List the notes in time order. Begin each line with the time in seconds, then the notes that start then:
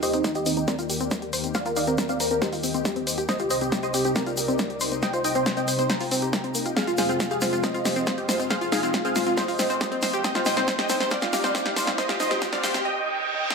Already playing: D#2 D#3 A#3 G4
0.03 G4 C5 D#5, open hi-hat, shaker
0.13 C4 D#4, closed hi-hat, shaker
0.24 C4 D#4, kick, snare, closed hi-hat, shaker
0.35 G4 D#5, closed hi-hat, shaker
0.46 C4 D#4, open hi-hat, shaker
0.57 C4 D#4, closed hi-hat, shaker
0.68 C4 A#4 D5, kick, snare, closed hi-hat, shaker
0.79 F4, closed hi-hat, shaker
0.90 G4, open hi-hat, shaker
1.00 C4, closed hi-hat, shaker
1.11 C4, kick, snare, closed hi-hat, shaker
1.22 G4, closed hi-hat
1.33 C5, open hi-hat, shaker
1.44 C4, closed hi-hat, shaker
1.55 C5 D5 F5, kick, snare, closed hi-hat, shaker
1.66 F4 A#4, closed hi-hat, shaker
1.76 D#4 D5 F5, open hi-hat, shaker
1.87 C4 A#4, closed hi-hat, shaker
1.98 C4 A#4, kick, snare, closed hi-hat, shaker
2.09 C4 D5 F5, closed hi-hat, shaker
2.20 A#4 C5, open hi-hat, shaker
2.31 C4 A#4, closed hi-hat, shaker
2.42 G4 C5 D#5, kick, snare, closed hi-hat, shaker
2.53 F4, open hi-hat, shaker
2.63 C4, open hi-hat, shaker
2.74 C4, closed hi-hat, shaker
2.85 G3, kick, snare, closed hi-hat, shaker
2.96 C4, closed hi-hat
3.07 C5, open hi-hat, shaker
3.18 G4, closed hi-hat, shaker
3.29 C2 C3 C4 D#4 C5 D#5, kick, snare, closed hi-hat, shaker
3.39 F4 G4, closed hi-hat, shaker
3.50 C5 D#5, open hi-hat, shaker
3.61 C4 G4, closed hi-hat, shaker
3.72 C4 G4, kick, snare, closed hi-hat, shaker
3.83 G4 C5 D#5, closed hi-hat, shaker
3.94 C4 G4, open hi-hat, shaker
4.05 C4 G4, closed hi-hat, shaker
4.16 C4 A#4 D5, kick, snare, closed hi-hat, shaker
4.26 F4, closed hi-hat, shaker
4.37 G4, open hi-hat, shaker
4.48 C4, closed hi-hat, shaker
4.59 C4, kick, snare, closed hi-hat, shaker
4.70 G4, closed hi-hat
4.80 C5, open hi-hat, shaker
4.92 C4, closed hi-hat, shaker
5.02 C5 D#5 G5, kick, snare, closed hi-hat, shaker
5.13 F4 C5, closed hi-hat, shaker
5.24 D#4 D#5 G5, open hi-hat, shaker
5.35 C4 C5, closed hi-hat, shaker
5.46 C4 C5, kick, snare, closed hi-hat, shaker
5.57 C4 D#5 G5, closed hi-hat, shaker
5.68 C5, open hi-hat, shaker
5.79 C4 C5, closed hi-hat, shaker
5.90 C5 G5 A#5, kick, snare, closed hi-hat, shaker
6.00 F4, open hi-hat, shaker
6.11 C4, open hi-hat, shaker
6.22 G4, closed hi-hat, shaker
6.33 A#3, kick, snare, closed hi-hat, shaker
6.44 C4, closed hi-hat
6.55 A#3, open hi-hat, shaker
6.66 F4, closed hi-hat, shaker
6.77 F2 G#3 C4 F4 G#4 F5, kick, snare, closed hi-hat, riser, shaker
6.87 F4, closed hi-hat, shaker
6.97 G#4 C5 F5, snare, open hi-hat, shaker
7.09 C4 F4, closed hi-hat, shaker
7.20 C4 F4, kick, snare, closed hi-hat, shaker
7.31 G4 G#4 F5, closed hi-hat, shaker
7.41 C4 F4, snare, open hi-hat, shaker
7.53 C4 F4, closed hi-hat, shaker
7.63 C4 C5 D#5, kick, snare, closed hi-hat, shaker
7.74 F4, closed hi-hat, shaker
7.85 G4, snare, open hi-hat, shaker
7.96 C4, closed hi-hat, shaker
8.07 C4, kick, snare, closed hi-hat, shaker
8.18 G4, closed hi-hat
8.29 C5, snare, open hi-hat, shaker
8.40 C4, closed hi-hat, shaker
8.50 G#4 C5 F5, kick, snare, closed hi-hat, shaker
8.61 F4, closed hi-hat, shaker
8.72 D#4 G#4 F5, snare, open hi-hat, shaker
8.83 C4 F4, closed hi-hat, shaker
8.94 C4 F4, kick, snare, closed hi-hat, shaker
9.05 C4 G#4 F5, closed hi-hat, shaker
9.16 F4 C5, snare, open hi-hat, shaker
9.26 C4 F4, closed hi-hat, shaker
9.37 C5 D#5, kick, snare, closed hi-hat, shaker
9.48 F4, open hi-hat, shaker
9.59 C4, snare, open hi-hat, shaker
9.70 C4, closed hi-hat, shaker
9.81 G3, kick, snare, closed hi-hat, shaker
9.92 C4, closed hi-hat
10.02 C5, snare, open hi-hat, shaker
10.13 G4, closed hi-hat, shaker
10.24 C2 G3 C4 D#4 D#5 G5, kick, snare, closed hi-hat, shaker
10.35 F4 C5, snare, closed hi-hat, shaker
10.45 C5 D#5 G5, snare, open hi-hat, shaker
10.57 C4 C5, snare, closed hi-hat, shaker
10.68 C4 C5, kick, snare, closed hi-hat, shaker
10.79 G4 D#5 G5, snare, closed hi-hat, shaker
10.89 C4 C5, snare, open hi-hat, shaker
11.00 C4 C5, snare, closed hi-hat, shaker
11.11 C4 D5 F5, kick, snare, closed hi-hat, shaker
11.22 F4, snare, closed hi-hat, shaker
11.33 G4, snare, open hi-hat, shaker
11.44 C4, snare, closed hi-hat, shaker
11.55 C4, kick, snare, closed hi-hat, shaker
11.66 G4, snare, closed hi-hat
11.76 C5, snare, open hi-hat, shaker
11.87 C4, snare, shaker
11.98 C5 D#5, kick, snare, closed hi-hat, shaker
12.09 F4 G4, snare, closed hi-hat, shaker
12.20 D#4 C5 D#5, snare, open hi-hat, shaker
12.31 C4 G4, snare, closed hi-hat, shaker
12.42 C4 G4, kick, snare, closed hi-hat, shaker
12.53 C4 D5 F5, snare, closed hi-hat, shaker
12.63 G4 C5, snare, open hi-hat, shaker
12.74 C4 G4, snare, shaker
12.85 D#5 G5, reverse cymbal
13.50 snare